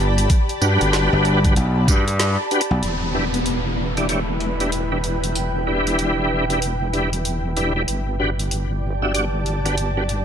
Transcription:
Already playing: G1 G4 D5 A5 B5
0.18 closed hi-hat
0.30 kick, closed hi-hat
0.49 closed hi-hat
0.61 G2 D4 F#4 G4 B4, tambourine
0.81 G1, cross-stick, closed hi-hat
0.93 snare, closed hi-hat
1.13 G1
1.25 closed hi-hat
1.44 D4 F#4 G4 B4, kick, closed hi-hat
1.56 B1, closed hi-hat
1.88 G2 D4 F#4 G4 B4, kick, closed hi-hat, tambourine
2.08 cross-stick, closed hi-hat
2.20 snare, closed hi-hat
2.51 D4 F#4 G4 B4, closed hi-hat
2.61 closed hi-hat
2.71 B1
2.83 E1 E4, closed hi-hat, downlifter
3.09 B4
3.14 D4 E4 G4 B4
3.34 closed hi-hat
3.46 closed hi-hat
3.92 G5
3.97 D4 E4 G4 D5, closed hi-hat
4.09 D4 E4 G4 C#5, closed hi-hat
4.40 closed hi-hat
4.60 D4 E4 G4 B4, closed hi-hat
4.72 closed hi-hat
4.92 D4 E4 G4 B4
5.04 closed hi-hat
5.24 closed hi-hat
5.35 closed hi-hat
5.67 D4 E4 G4 B4
5.87 closed hi-hat
5.99 closed hi-hat
6.49 D4 E4 G4 B4, closed hi-hat
6.62 closed hi-hat
6.93 D4 E4 G4 B4, closed hi-hat
7.13 closed hi-hat
7.25 closed hi-hat
7.57 D4 E4 G4 B4, closed hi-hat
7.76 D4 E4 G4 B4
7.88 G1 G4, closed hi-hat
8.07 D5
8.20 D4 F#4 G4 B4
8.39 closed hi-hat
8.51 closed hi-hat
8.65 A5
9.02 D4 F#4 G4 E5
9.14 D4 F#4 G4 D5, closed hi-hat
9.46 closed hi-hat
9.65 D4 F#4 G4 B4, closed hi-hat
9.78 closed hi-hat
9.97 D4 F#4 G4 B4
10.09 closed hi-hat
10.17 B5

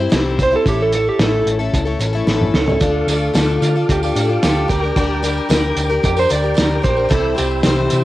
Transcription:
0.00 G3 C4 E4 C5
0.09 C2 C3 E3 G3 C4 E4 C5, snare, closed hi-hat
0.39 G3 C4 E4 C5, kick, closed hi-hat
0.51 G3 C4 E4 C5
0.56 A4
0.66 A1 A2 E3 A3 C#4 E4 G4 A4, kick, closed hi-hat
0.82 A4
0.93 A3 C#4 E4 A4, closed hi-hat
0.97 A4
1.09 G4
1.19 A1 A2 E3 A3 C#4 E4 A4, snare, closed hi-hat
1.23 A4
1.46 A1, closed hi-hat
1.59 A3 C#4 E4 A4
1.74 C#2, kick, closed hi-hat
1.85 A3 C#4 E4 A4
1.99 A1 A3 C#4 E4 A4, closed hi-hat
2.13 A3 C#4 E4 A4
2.27 A1 A2 E3 A3 C#4 E4 A4, snare
2.41 mid tom
2.54 C#2 A3 C#4 E4 A4, snare
2.66 A3 C#4 E4 A4, floor tom
2.80 D2 D3 A3 D4 F4 A4, kick, closed hi-hat
2.84 A4 F5 D6
3.07 D2 A3 D4 F4, closed hi-hat, tambourine
3.11 A4
3.33 D2 D3 A3 D4 F4 A4, snare, closed hi-hat, tambourine
3.49 tambourine
3.62 D3 F4, closed hi-hat, tambourine
3.75 D4 F4 A4, tambourine
3.89 D2 G4, kick, closed hi-hat, tambourine
4.03 D4 F4 G4 A4, tambourine
4.15 A2 A3 D4 F4 A4, closed hi-hat, tambourine
4.28 D4 F4 A4
4.42 D2 D3 A3 D4 F4 G4 A4, snare, closed hi-hat, tambourine
4.68 D2 G3 D4 G4 A#4 G5 D6, kick, closed hi-hat
4.82 D4 G4 A#4
4.96 D2 D3 G3 D4 G4 A#4, kick, closed hi-hat
5.22 G3 D4 G4 A#4, closed hi-hat, tambourine
5.37 tambourine
5.49 D2 D3 G3 D4 G4 A#4, snare, closed hi-hat, tambourine
5.76 D2, closed hi-hat, tambourine
5.89 D4 G4 A#4, tambourine
6.03 F2 G4, kick, closed hi-hat, tambourine
6.17 D4 G4 A#4 C5, tambourine
6.29 D2 G3 D4 G4 A#4 D5, closed hi-hat, tambourine
6.42 D4 G4 A#4
6.54 D2 D3 G3 D4 G4 A#4, snare, closed hi-hat, tambourine
6.71 tambourine
6.82 A#1 G3 D4 G4 A#4 C5, kick, closed hi-hat
6.96 D4 G4 A#4
7.09 C2 C3 E3 G3 C4 E4 A4 C5 E6, kick, closed hi-hat
7.35 G3 C4 E4 G4 C5, closed hi-hat, tambourine
7.39 C2
7.51 tambourine
7.63 C2 C3 E3 G3 C4 C5, snare, closed hi-hat, tambourine
7.67 E4
7.77 tambourine
7.90 C3, closed hi-hat, tambourine

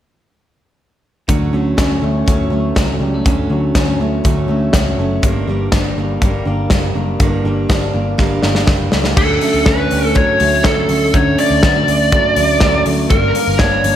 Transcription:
1.28 D2 D3 F#3 A3 C#4, kick, closed hi-hat
1.53 D2 F#3 A3 C#4
1.77 D2 D3 F#3 A3 C#4, kick, snare, closed hi-hat
2.01 D2 F#3 A3 C#4
2.26 D2 D3 F#3 A3 C#4, kick, closed hi-hat
2.50 D2 F#3 A3 C#4
2.75 C#2 D3 F#3 A3 C#4, kick, snare, closed hi-hat
2.99 C#2 F#3 G3 A3 C#4
3.14 A3
3.25 D2 D3 F#3 A3 C#4, kick, closed hi-hat
3.50 D2 F#3 A3 C#4
3.74 D2 D3 F#3 A3 C#4, kick, snare, closed hi-hat
4.00 D2 F#3 A3 C#4
4.24 D2 D3 F#3 A3 C#4, kick, closed hi-hat
4.48 D2 F#3 A3 C#4
4.73 C#2 D3 F#3 A3 C#4, kick, snare, closed hi-hat
4.98 F#1 F#3 A3 C#4
5.22 G1 G2 D3 G3 A#3 D4, kick, closed hi-hat
5.47 G1 G3 A#3 D4
5.72 G1 D3 G3 A#3, kick, snare, closed hi-hat
5.76 D4
5.96 G1 G3 A#3 D4
6.21 G1 G2 D3 G3 A#3 D4, kick, closed hi-hat
6.45 G1 G3 A#3 D4
6.70 F#1 D3 G3 A#3 D4, kick, snare, closed hi-hat
6.95 F#1 G3 A#3 D4
7.20 G1 G2 D3 G3 A#3 D4, kick, closed hi-hat
7.44 G1 G3 A#3 D4
7.69 G1 D3 G3 A#3 D4, kick, snare, closed hi-hat
7.93 G1 G3 A#3 D4
8.18 G1 G2 D3 G3 A#3 D4, kick, snare
8.42 G1 G3 A#3 D4, snare
8.55 snare
8.67 F#1 D3 G3 A#3 D4, kick, snare
8.91 C#2 G3 A#3 D4, snare
9.04 snare
9.16 D2 D3 F#3 A3 C#4 A4, kick, crash
9.41 F#3 A3 C#4, open hi-hat
9.54 D2
9.65 D2 D3 F#3 A3 C#4 B4, kick, snare, closed hi-hat
9.89 D2 F#3 G3 A3 C#4, open hi-hat
10.04 A3
10.14 D3 F#3 A3 C#4 C#5, kick, closed hi-hat
10.38 D2 F#3 A3 C#4, open hi-hat
10.63 D2 D3 F#3 A3 C#4 A4, kick, snare, closed hi-hat
10.88 D2 F#3 A3 C#4, open hi-hat
11.14 D2 D3 F#3 A3 C#4 C#5, kick, closed hi-hat
11.38 F#3 A3 C#4 D5, open hi-hat
11.50 D2
11.63 D2 D3 F#3 A3 B3 C#4, kick, snare, closed hi-hat
11.87 D2 F#3 A3 C#4, open hi-hat
12.11 D3 F#3 A3 C#4, kick, closed hi-hat
12.36 D2 F#3 A3 C#4, open hi-hat
12.60 D2 D3 F#3 A3 C#4, kick, snare, closed hi-hat
12.85 D2 F#3 A3 C#4, open hi-hat
13.09 G1 G2 D3 G3 A#3 D4 A#4, kick, closed hi-hat
13.35 G3 A#3 D4, open hi-hat
13.48 G1
13.59 G2 D3 G3 A#3 D4 C#5, kick, snare, closed hi-hat
13.84 G1 G3 A#3 D4, open hi-hat

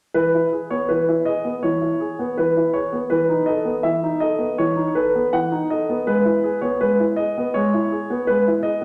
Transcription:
0.14 E3 B4
0.35 E4
0.52 G#4
0.70 B3 C#5
0.89 E3 B4
1.09 E4
1.25 G#4 D#5
1.45 B3
1.63 E3 C#5
1.81 E4
2.00 G#4
2.19 B3
2.37 E3 B4
2.57 E4
2.74 G#4 C#5
2.93 B3
3.10 E3 B4
3.29 D#4
3.46 A4 D#5
3.65 B3
3.83 E3 E5
4.03 D#4
4.20 A4 D#5
4.38 B3
4.58 E3 C#5
4.76 D#4
4.95 A4 B4
5.15 B3
5.33 E3 F#5
5.52 D#4
5.70 A4 D#5
5.89 B3
6.07 G#3 B4
6.25 E4
6.44 G#4
6.61 B3 C#5
6.81 G#3 B4
7.00 E4
7.16 G#4 D#5
7.37 B3
7.54 G#3 C#5
7.74 E4
7.92 G#4
8.10 B3
8.27 G#3 B4
8.47 E4
8.63 G#4 D#5

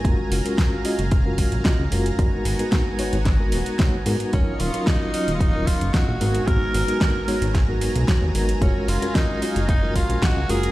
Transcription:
Already playing: F#3 G#5 A#5
0.04 F#1 G#3 C#4 F4 F#4 A#4 F5, kick, closed hi-hat
0.31 F#1, open hi-hat
0.44 G#3 C#4 F4 F#4 A#4, closed hi-hat
0.58 kick, snare, closed hi-hat
0.84 G#3 C#4 F4 F#4 D#5, open hi-hat
0.99 F#1, closed hi-hat
1.11 kick, closed hi-hat
1.25 G#3 C#4 F4 F#4 A#4
1.38 kick, open hi-hat
1.52 A#1, closed hi-hat
1.65 G#3 C#4 F4 F#4 D#5, kick, snare, closed hi-hat
1.79 C#2
1.91 F#1 G#3 C#4 F4 F#4 A#4, open hi-hat
2.06 closed hi-hat
2.18 G#1 G#3 B3 D#4 F#4 A#4 G#5, kick, closed hi-hat
2.45 G#1, open hi-hat
2.59 G#3 B3 D#4 F#4 A#4, closed hi-hat
2.72 kick, snare, closed hi-hat
2.98 G#1 G#3 B3 D#4 F#4 C#5, open hi-hat
3.13 G#1, closed hi-hat
3.25 kick, snare, closed hi-hat
3.39 G#3 B3 D#4 F#4 A#4
3.52 D#1, open hi-hat
3.66 closed hi-hat
3.79 G#3 B3 D#4 F#4 C#5, kick, snare, closed hi-hat
4.06 G#2 G#3 B3 D#4 F#4 A#4, open hi-hat
4.20 closed hi-hat
4.32 D#1 F#3 C#4 D#5 F5 C#6, kick, closed hi-hat
4.60 D#1 F4, open hi-hat
4.74 F#3 C#4 D#4 F4 A#4, closed hi-hat
4.87 D#4, kick, snare, closed hi-hat
5.14 F#3 C#4 D#4 F4 D#5, open hi-hat
5.28 D#1, closed hi-hat
5.35 F4
5.40 D#4, kick, closed hi-hat
5.54 F#3 C#4 D#4 F4 A#4
5.67 F4, kick, open hi-hat
5.81 F#1, closed hi-hat
5.93 F#3 C#4 D#4 F4 F#4 D#5, kick, snare, closed hi-hat
6.08 A#1
6.20 G#1 G#3 B3 D#4 F#4 A#4 G#5 A#5, open hi-hat
6.35 closed hi-hat
6.47 G#1 G#3 B3 D#4 F#4 A#4, kick, closed hi-hat
6.74 G#1, open hi-hat
6.87 G#3 B3 D#4 F#4 A#4, closed hi-hat
7.01 kick, snare, closed hi-hat
7.27 G#1 G#3 B3 D#4 F#4 C#5, open hi-hat
7.42 G#1, closed hi-hat
7.55 kick, snare, closed hi-hat
7.68 G#3 B3 D#4 F#4 A#4
7.81 open hi-hat
7.95 B1, closed hi-hat
8.07 G#3 B3 D#4 F#4 C#5, kick, snare, closed hi-hat
8.22 D#2
8.34 G#1 G#3 B3 D#4 F#4 A#4, open hi-hat
8.49 closed hi-hat
8.61 F#1 G#3 C#4 F4 F#4 A#4 F5, kick, closed hi-hat
8.88 F#1 F4, open hi-hat
9.02 G#3 C#4 F4 F#4 A#4, closed hi-hat
9.15 D#4, kick, snare, closed hi-hat
9.41 G#3 C#4 F4 F#4 D#5, open hi-hat
9.56 F#1, closed hi-hat
9.69 D#4, kick, closed hi-hat
9.82 G#3 C#4 F4 F#4 A#4
9.96 F4, kick, open hi-hat
10.09 A#1, closed hi-hat
10.22 G#3 C#4 F4 F#4 D#5, kick, snare, closed hi-hat
10.36 C#2
10.49 F#1 G#3 C#4 F4 F#4 G#4 A#4, open hi-hat
10.63 closed hi-hat

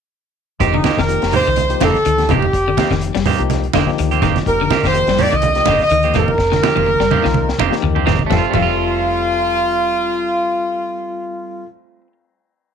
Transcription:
0.60 F1 D#3 F3 A#3 C4 D#4 G4, muted clean electric guitar stroke, kick, closed hi-hat, low conga
0.74 D3, high conga
0.84 D#3 A#3 C4 G4, kick, snare, closed hi-hat, high conga
0.97 F1 D#3 A#4, kick, snare, closed hi-hat
1.08 F3 A#3 D#4 G4, closed hi-hat
1.22 F1, snare, closed hi-hat
1.32 D#3 A#3 C4 G4, open hi-hat, high conga, low conga
1.36 C5
1.45 C2 D#3, closed hi-hat
1.56 closed hi-hat, high conga
1.69 F3 A#3 D#4 G4, closed hi-hat
1.80 F1 D3 D#3 A#3 C4 G4 A4, kick, snare, closed hi-hat, high conga, low conga
1.94 kick, snare, closed hi-hat
2.05 D2 D#3, closed hi-hat
2.17 F3 A#3 D#4 G4, snare, closed hi-hat
2.29 F1 C3 D#3 A#3 C4 G4, kick, closed hi-hat, high conga, low conga
2.33 G4
2.42 high conga
2.53 F1, kick, closed hi-hat
2.68 D3
2.77 D#3 F3 A#3 C4 D#4 G4, kick, snare, closed hi-hat, high conga
2.90 F1 D#3, kick, snare, closed hi-hat
3.01 closed hi-hat
3.15 F1 G3, snare, closed hi-hat
3.26 D#3 A#3 C4 G4, open hi-hat, high conga, low conga
3.38 C2 F3 A#3 D#4 G4, closed hi-hat
3.50 snare, closed hi-hat, high conga
3.64 closed hi-hat
3.73 F1 D3 D#3 A#3 C4 G4, kick, snare, closed hi-hat, high conga
3.87 F3 A#3 D#4 G4, kick, snare
3.98 D2 D#3, closed hi-hat
4.11 A#3 C4 G4, closed hi-hat
4.21 F1 D#3 A#3 C4 G4, kick, snare, closed hi-hat, low conga
4.36 snare, closed hi-hat, high conga
4.46 F1 F3 A#3 D#4 G4 A#4, kick, closed hi-hat
4.61 D3
4.70 D#3 A#3 C4 G4, kick, snare, closed hi-hat, high conga
4.83 F1 D#3 A#3 C4 G4 C5, kick, snare, closed hi-hat
4.94 F3 A#3 D#4 G4, closed hi-hat
5.07 F1 G3, snare, closed hi-hat
5.18 D#3 A#3 C4 G4 D5, open hi-hat, high conga, low conga
5.31 C2 D#3 D#5, closed hi-hat
5.42 closed hi-hat, high conga
5.55 F3 A#3 D#4 G4, snare, closed hi-hat
5.65 F1 D3 A#3 C4 G4, muted clean electric guitar stroke, kick, snare, closed hi-hat, high conga, low conga
5.79 D#5, kick, snare, closed hi-hat
5.90 D2 D#3, closed hi-hat
6.03 F3 A#3 C4 D#4 G4, closed hi-hat
6.14 F1 D#3 A#3 C4 G4, kick, snare, closed hi-hat, high conga, low conga
6.18 A#4
6.28 high conga
6.38 F1, kick, snare
6.52 D3, snare, high conga
6.62 D#3 F3 A#3 D#4 G4, muted clean electric guitar stroke, snare, high conga
6.75 F1 D#3 A#3 C4 G4, high tom, high conga
6.86 mid tom
7.00 F1 G3, snare
7.11 D#3 A#3 C4 G4, mid tom, high conga, low conga
7.23 C2 D#3 F3 A#3 D#4 F4, snare
7.34 kick, high conga
7.49 snare
7.58 F1 D#3 A#3 C4 G4, muted clean electric guitar stroke, kick, high conga
7.69 F3 A#3 D#4 G4, snare
7.83 D2 D#3, floor tom
7.95 A#3 C4 G4, floor tom
8.05 F1 D#3 A#3 C4 G4, snare, low conga
8.19 kick, high conga
8.26 G3 A3 C4 F4
8.30 F1 F3 C4 F4 A4, kick, snare, low conga
8.38 F4
8.50 G3 A3 C4 F4, low conga
8.54 F1 F3 C4 F4 A4, kick, crash
8.62 F4

